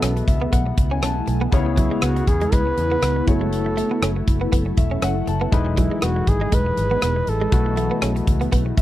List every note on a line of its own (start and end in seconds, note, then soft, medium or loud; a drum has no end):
0.00 0.20 B1 medium
0.00 0.23 B2 medium
0.00 1.50 A3 medium
0.00 1.48 B3 medium
0.00 3.24 B3 medium
0.00 0.14 C#4 medium
0.00 5.48 E4 medium
0.00 1.48 F#4 medium
0.00 0.28 A4 medium
0.00 1.49 A4 medium
0.00 0.26 E5 medium
0.00 cross-stick medium
0.00 closed hi-hat medium
0.17 muted clean electric guitar stroke soft
0.17 closed hi-hat soft
0.28 0.46 C#2 medium
0.28 0.51 E5 medium
0.28 kick medium
0.28 closed hi-hat medium
0.42 0.50 B3 medium
0.52 0.70 B1 medium
0.52 0.64 B3 medium
0.52 0.89 F#5 medium
0.52 kick medium
0.52 closed hi-hat medium
0.66 muted clean electric guitar stroke soft
0.78 1.03 C#2 medium
0.78 kick medium
0.78 closed hi-hat medium
0.91 1.00 C#4 medium
0.91 1.02 G#5 medium
1.02 1.21 B1 medium
1.02 1.14 C#4 medium
1.02 1.49 A5 medium
1.02 cross-stick medium
1.02 closed hi-hat medium
1.27 1.46 B1 medium
1.27 muted clean electric guitar stroke soft
1.27 closed hi-hat medium
1.41 1.50 B3 medium
1.51 1.89 C#2 loud
1.51 2.23 C#3 medium
1.51 3.26 C#3 medium
1.51 3.23 B3 medium
1.51 3.24 E4 medium
1.51 3.24 G#4 medium
1.51 3.25 C#5 medium
1.51 kick loud
1.51 closed hi-hat medium
1.66 muted clean electric guitar stroke soft
1.77 1.89 F#3 medium
1.77 2.05 E4 medium
1.77 kick medium
1.77 closed hi-hat medium
1.91 2.00 G#3 medium
2.02 2.20 C#2 medium
2.02 2.14 B3 medium
2.02 2.30 F#4 medium
2.02 cross-stick loud
2.02 closed hi-hat medium
2.16 muted clean electric guitar stroke soft
2.16 closed hi-hat soft
2.27 2.45 E2 medium
2.27 2.55 G#4 medium
2.27 kick medium
2.27 closed hi-hat medium
2.41 2.51 G#3 medium
2.41 closed hi-hat soft
2.52 2.70 C#2 medium
2.52 2.64 G#3 medium
2.52 3.28 B4 loud
2.52 kick medium
2.52 closed hi-hat medium
2.67 muted clean electric guitar stroke soft
2.78 2.96 E2 medium
2.78 closed hi-hat medium
2.92 3.00 B3 medium
3.02 3.20 C#2 medium
3.02 3.14 B3 medium
3.02 cross-stick medium
3.02 closed hi-hat medium
3.16 muted clean electric guitar stroke soft
3.26 3.81 F#1 medium
3.26 5.50 F#3 medium
3.26 5.23 A3 medium
3.26 5.23 E4 medium
3.26 5.24 F#4 medium
3.26 5.50 A4 medium
3.26 4.24 A4 medium
3.26 5.24 C#5 medium
3.26 kick medium
3.26 closed hi-hat medium
3.41 3.50 G#3 medium
3.53 closed hi-hat medium
3.66 muted clean electric guitar stroke soft
3.77 3.88 A3 medium
3.77 closed hi-hat medium
3.91 4.00 B3 medium
4.02 4.20 F#1 medium
4.02 4.14 C#4 medium
4.02 cross-stick loud
4.02 closed hi-hat medium
4.16 muted clean electric guitar stroke soft
4.28 4.46 F#1 medium
4.28 kick medium
4.28 closed hi-hat medium
4.41 4.50 B3 medium
4.52 4.71 F#1 loud
4.52 4.63 B3 medium
4.52 kick medium
4.52 closed hi-hat medium
4.66 muted clean electric guitar stroke soft
4.77 4.95 E1 medium
4.77 5.01 E5 medium
4.77 kick loud
4.77 closed hi-hat medium
4.91 5.00 C#4 medium
5.02 5.20 F#1 medium
5.02 5.14 C#4 medium
5.02 5.26 F#5 medium
5.02 cross-stick medium
5.02 closed hi-hat medium
5.27 5.45 F#1 medium
5.27 5.51 A5 medium
5.27 muted clean electric guitar stroke soft
5.27 closed hi-hat medium
5.41 5.50 B3 medium
5.51 5.88 E1 loud
5.51 6.23 E3 medium
5.51 7.50 E3 medium
5.51 7.48 G#3 medium
5.51 7.48 D#4 medium
5.51 7.49 E4 medium
5.51 7.50 G#4 medium
5.51 7.49 B4 medium
5.51 7.51 D#5 medium
5.51 kick loud
5.51 closed hi-hat medium
5.66 muted clean electric guitar stroke soft
5.77 5.89 F#3 medium
5.77 6.05 E4 medium
5.77 kick medium
5.77 closed hi-hat medium
5.91 6.00 G#3 medium
6.02 6.20 E1 medium
6.02 6.13 B3 medium
6.02 6.30 F#4 medium
6.02 cross-stick loud
6.02 closed hi-hat medium
6.16 muted clean electric guitar stroke soft
6.27 6.45 G#1 medium
6.27 6.56 G#4 medium
6.27 kick medium
6.27 closed hi-hat medium
6.41 6.50 G#3 medium
6.52 6.70 E1 medium
6.52 6.63 G#3 medium
6.52 7.31 B4 loud
6.52 kick medium
6.52 closed hi-hat medium
6.66 muted clean electric guitar stroke soft
6.77 6.95 G#1 medium
6.77 closed hi-hat medium
6.91 7.00 B3 medium
7.02 7.20 E1 medium
7.02 7.13 B3 medium
7.02 cross-stick loud
7.02 closed hi-hat medium
7.16 muted clean electric guitar stroke soft
7.27 7.45 A1 medium
7.27 8.28 A4 medium
7.27 closed hi-hat medium
7.41 7.50 G#3 medium
7.51 7.88 B1 loud
7.51 8.23 B2 medium
7.51 8.82 A3 medium
7.51 8.82 B3 medium
7.51 8.82 E4 medium
7.51 8.82 F#4 medium
7.51 8.82 B4 medium
7.51 kick loud
7.51 closed hi-hat medium
7.66 muted clean electric guitar stroke soft
7.77 7.88 A3 medium
7.77 closed hi-hat medium
7.91 8.00 B3 medium
8.02 8.20 B1 loud
8.02 8.13 C#4 medium
8.02 cross-stick loud
8.02 closed hi-hat medium
8.16 muted clean electric guitar stroke soft
8.16 closed hi-hat soft
8.27 8.45 C#2 medium
8.27 kick medium
8.27 closed hi-hat medium
8.41 8.50 B3 medium
8.41 closed hi-hat soft
8.52 8.70 B1 medium
8.52 8.63 B3 medium
8.52 kick medium
8.52 closed hi-hat medium
8.66 muted clean electric guitar stroke soft
8.77 8.82 C#2 medium
8.77 8.82 E5 medium
8.77 kick loud
8.77 closed hi-hat medium